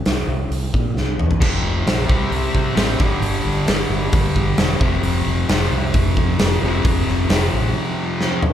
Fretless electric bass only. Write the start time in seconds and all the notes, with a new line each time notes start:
0.06 C2
0.27 C2
0.51 C2
0.74 A#2
0.95 C2
1.19 E2
1.42 F1
1.63 F1
1.87 A#1
2.09 C2
2.31 C2
2.55 C3
2.77 A1
3.00 G1
3.22 G1
3.45 G1
3.68 G1
3.90 G1
4.13 G1
4.36 G1
4.59 E1
4.80 F1
5.03 F1
5.26 F1
5.49 F1
5.71 C2
5.95 F1
6.17 F2
6.39 F1
6.62 F1
6.85 F1
7.07 F1
7.30 F1
7.53 A1